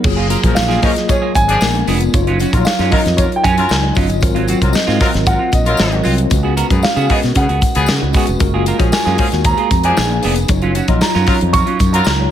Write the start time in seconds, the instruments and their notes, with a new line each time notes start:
0.03 fretless electric bass F#1, tine electric piano F#3 A#3 F4 G#4, muted clean electric guitar stroke, kick, crash, tambourine
0.16 clean electric guitar A#3 F4 G#4
0.29 clean electric guitar A#3 F4 A#4, closed hi-hat, tambourine
0.43 fretless electric bass A#1, horn section F3 C#4 A#4, tine electric piano F#3 A#3 F4 A#4, muted clean electric guitar stroke, kick, closed hi-hat, tambourine
0.55 fretless electric bass A#1, grand piano F5, muted clean electric guitar stroke, snare, tambourine
0.68 clean electric guitar A#3 F4 G#4, snare, tambourine
0.82 horn section F3 C#4 A#4, tine electric piano F#3 A#3 F4 G#4, clean electric guitar A#3 F4 G#4, grand piano D#5, kick, snare, open hi-hat
0.95 muted clean electric guitar stroke, snare, closed hi-hat
1.08 horn section F3 C#4 G#4, grand piano C#5, muted clean electric guitar stroke, kick, closed hi-hat, tambourine
1.22 clean electric guitar A#3 F4 G#4
1.35 fretless electric bass G#1, grand piano G#5, muted clean electric guitar stroke, kick, closed hi-hat, tambourine
1.48 horn section F3 D4 G#4, muted clean electric guitar stroke, closed hi-hat
1.61 fretless electric bass A#1, tine electric piano G#3 B3 D4 A#4, snare, tambourine
1.73 tine electric piano G#3 B3 D4 A#4, muted clean electric guitar stroke, closed hi-hat
1.87 fretless electric bass F1, tine electric piano G#3 B3 D4 F4, clean electric guitar B3 D4 G#4, open hi-hat, tambourine
2.00 muted clean electric guitar stroke, closed hi-hat, tambourine
2.13 fretless electric bass F#1, tine electric piano F#3 D#4 F4 C#5, muted clean electric guitar stroke, kick, closed hi-hat, tambourine
2.27 clean electric guitar F#3 C#4 F4, closed hi-hat
2.39 clean electric guitar F#3 C#4 F#4, closed hi-hat, tambourine
2.52 fretless electric bass A#1, tine electric piano F#3 D#4 F4 C#5, horn section F#3 F4 A#4, muted clean electric guitar stroke, kick, closed hi-hat, tambourine
2.65 grand piano F5, muted clean electric guitar stroke, snare, tambourine
2.79 fretless electric bass F#2, clean electric guitar F#3 C#4 F4, snare, closed hi-hat, tambourine
2.91 tine electric piano F#3 D#4 F4 A#4, horn section F#3 F4 A#4, clean electric guitar F#3 C#4 F4, grand piano D#5, kick, open hi-hat
3.05 fretless electric bass F2, muted clean electric guitar stroke, snare, closed hi-hat, tambourine
3.17 horn section F#3 F4 A#4, grand piano C#5, kick, closed hi-hat, tambourine
3.31 muted clean electric guitar stroke, closed hi-hat
3.36 grand piano G5
3.43 fretless electric bass F#2, clean electric guitar F#3 C#4 F4, grand piano G#5, kick, closed hi-hat, tambourine
3.58 horn section F#3 F4 A#4, muted clean electric guitar stroke, closed hi-hat
3.69 fretless electric bass C#2, snare, tambourine
3.82 tine electric piano F#3 D#4 F4 D#5, muted clean electric guitar stroke
3.95 fretless electric bass G1, tine electric piano F#3 D#4 F4 D#5, clean electric guitar F#3 C#4 F4, kick, open hi-hat, tambourine
4.09 muted clean electric guitar stroke, closed hi-hat, tambourine
4.21 fretless electric bass G#1, tine electric piano F#3 C4 F4 A#4, muted clean electric guitar stroke, kick, closed hi-hat, tambourine
4.35 clean electric guitar F#3 C4 F4, closed hi-hat
4.47 clean electric guitar F#3 C4 F#4, closed hi-hat, tambourine
4.61 fretless electric bass C2, tine electric piano F#3 C4 F4 A#4, horn section F#3 F4 A#4, kick, closed hi-hat, tambourine
4.73 grand piano D#5, muted clean electric guitar stroke, snare, tambourine
4.87 fretless electric bass G#2, clean electric guitar F#3 C4 F4, snare, tambourine
5.00 clean electric guitar F#3 C4 F4, tine electric piano F#3 C4 F4 A#4, horn section F#3 F4 A#4, kick, snare, open hi-hat
5.13 fretless electric bass G#1, muted clean electric guitar stroke, snare, closed hi-hat, tambourine
5.26 horn section F#3 F4 A#4, grand piano F#5, muted clean electric guitar stroke, kick, closed hi-hat, tambourine
5.39 clean electric guitar F#3 C4 F4
5.52 fretless electric bass A#1, grand piano D#5, muted clean electric guitar stroke, kick, closed hi-hat, tambourine
5.65 horn section F#3 F4 A#4, grand piano D#5, muted clean electric guitar stroke, closed hi-hat, tambourine
5.77 fretless electric bass G#1, tine electric piano F#3 C4 F4 A#4, snare, tambourine
5.91 tine electric piano F#3 C4 F4 A#4, muted clean electric guitar stroke, closed hi-hat
6.03 fretless electric bass C2, clean electric guitar F#3 C4 F4, tine electric piano F#3 C4 F4 C5, open hi-hat, tambourine
6.17 muted clean electric guitar stroke, closed hi-hat
6.30 fretless electric bass C#2, tine electric piano G#3 C#4 F#4 B4, muted clean electric guitar stroke, kick, closed hi-hat, tambourine
6.43 clean electric guitar B3 F#4 G#4
6.56 clean electric guitar B3 F#4 A#4, closed hi-hat, tambourine
6.69 fretless electric bass F#2, horn section C#3 B3 G#4, tine electric piano G#3 C#4 F#4 B4, muted clean electric guitar stroke, kick, closed hi-hat, tambourine
6.83 grand piano F5, muted fretless electric bass stroke, muted clean electric guitar stroke, snare, tambourine
6.96 fretless electric bass C#3, clean electric guitar B3 F#4 G#4, closed hi-hat, tambourine
7.09 horn section C#3 B3 G#4, tine electric piano G#3 C#4 F#4 A#4, clean electric guitar B3 F#4 G#4, grand piano D#5, kick, open hi-hat
7.16 tine electric piano B4
7.22 fretless electric bass B2, muted clean electric guitar stroke, snare, closed hi-hat, tambourine
7.35 horn section C#3 B3 G#4, fretless electric bass C#3, grand piano F#5, muted clean electric guitar stroke, kick, closed hi-hat, tambourine
7.49 fretless electric bass C#2, clean electric guitar B3 F#4 G#4, closed hi-hat
7.61 muted clean electric guitar stroke, kick, closed hi-hat, tambourine
7.75 fretless electric bass C#2, horn section C#3 B3 G#4, muted clean electric guitar stroke, closed hi-hat, tambourine
7.86 fretless electric bass C#3, snare, tambourine
8.01 fretless electric bass C#2, tine electric piano G#3 C#4 F#4 B4, muted clean electric guitar stroke
8.13 tine electric piano G#3 C#4 F#4 B4, clean electric guitar B3 F#4 G#4, kick, open hi-hat, tambourine
8.27 fretless electric bass F1, muted clean electric guitar stroke, closed hi-hat, tambourine
8.39 fretless electric bass F#1, tine electric piano G#3 F4 F#4 A#4, muted clean electric guitar stroke, kick, closed hi-hat, tambourine
8.54 clean electric guitar A#3 F4 G#4
8.66 clean electric guitar A#3 F4 A#4, closed hi-hat, tambourine
8.78 fretless electric bass A#1, horn section F3 C#4 G#4, tine electric piano G#3 F4 F#4 C#5, muted clean electric guitar stroke, kick, closed hi-hat, tambourine
8.92 grand piano G#5, muted clean electric guitar stroke, muted fretless electric bass stroke, snare, tambourine
9.05 fretless electric bass F#2, clean electric guitar A#3 F4 G#4, snare, closed hi-hat, tambourine
9.18 horn section F3 C#4 G#4, tine electric piano G#3 F4 F#4 A#4, clean electric guitar A#3 F4 G#4, kick, open hi-hat
9.32 fretless electric bass D#2, muted clean electric guitar stroke, snare, closed hi-hat, tambourine
9.45 horn section F3 C#4 G#4, grand piano A#5, muted clean electric guitar stroke, kick, closed hi-hat, tambourine
9.57 clean electric guitar A#3 F4 G#4, closed hi-hat
9.71 fretless electric bass F2, muted clean electric guitar stroke, kick, closed hi-hat, tambourine
9.83 horn section F3 D4 G#4, grand piano G#5, muted clean electric guitar stroke, closed hi-hat
9.97 fretless electric bass A#1, tine electric piano A#3 D4 G#4 B4, snare, tambourine
10.10 tine electric piano A#3 D4 G#4 B4, muted clean electric guitar stroke
10.22 fretless electric bass F1, tine electric piano A#3 D4 G#4 B4, clean electric guitar B3 D4 G#4, open hi-hat, tambourine
10.36 muted clean electric guitar stroke, closed hi-hat, tambourine
10.48 fretless electric bass F#1, tine electric piano F#3 D#4 F4 C#5, muted clean electric guitar stroke, kick, closed hi-hat, tambourine
10.62 clean electric guitar F#3 C#4 F4, closed hi-hat
10.75 clean electric guitar F#3 C#4 F#4, closed hi-hat, tambourine
10.88 fretless electric bass A#1, tine electric piano F#3 D#4 F4 D#5, horn section F#3 F4 A#4, muted clean electric guitar stroke, kick, closed hi-hat
11.01 grand piano A#5, muted clean electric guitar stroke, snare, tambourine
11.15 fretless electric bass F#2, clean electric guitar F#3 C#4 F4, snare, tambourine
11.26 horn section F#3 F4 A#4, tine electric piano F#3 D#4 F4 C#5, clean electric guitar F#3 C#4 F4, kick, snare, open hi-hat
11.41 fretless electric bass F2, closed hi-hat
11.53 horn section F#3 F4 A#4, grand piano C#6, muted clean electric guitar stroke, kick, closed hi-hat, tambourine
11.66 clean electric guitar F#3 C#4 F4, closed hi-hat
11.79 fretless electric bass F#2, kick, closed hi-hat, tambourine
11.93 horn section F#3 F4 A#4, grand piano A#5, muted clean electric guitar stroke, closed hi-hat, tambourine
12.05 fretless electric bass C#2, snare, tambourine
12.19 tine electric piano F#3 D#4 F4 C#5, muted clean electric guitar stroke